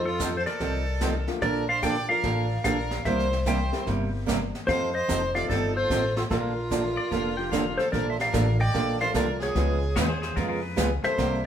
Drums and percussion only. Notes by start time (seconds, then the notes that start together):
0.20 kick, snare, hi-hat pedal
0.46 snare
0.60 brush sweep, kick, snare
1.01 kick, snare, hi-hat pedal
1.28 snare
1.42 brush sweep, kick, snare
1.83 kick, snare, hi-hat pedal
2.23 brush sweep, kick, snare
2.64 kick, snare, hi-hat pedal
2.91 snare
3.05 brush sweep, kick, snare
3.19 snare
3.33 snare
3.46 kick, snare, hi-hat pedal
3.73 snare
3.87 brush sweep, kick, snare
4.28 kick, snare, hi-hat pedal
4.55 snare
4.68 brush sweep, kick, snare
5.09 kick, snare, hi-hat pedal
5.36 snare
5.50 brush sweep, kick, snare
5.90 kick, snare, hi-hat pedal
6.17 snare
6.31 brush sweep, kick, snare
6.71 kick, snare, hi-hat pedal
7.12 brush sweep, kick, snare
7.52 kick, snare, hi-hat pedal
7.79 snare
7.93 brush sweep, kick, snare
8.20 snare
8.34 kick, snare, hi-hat pedal
8.74 brush sweep, kick, snare
9.01 snare
9.14 kick, snare, hi-hat pedal
9.42 snare
9.56 brush sweep, kick, snare
9.96 kick, snare, hi-hat pedal
10.23 snare
10.37 brush sweep, kick, snare
10.77 kick, snare, hi-hat pedal
11.04 snare
11.18 brush sweep, kick, snare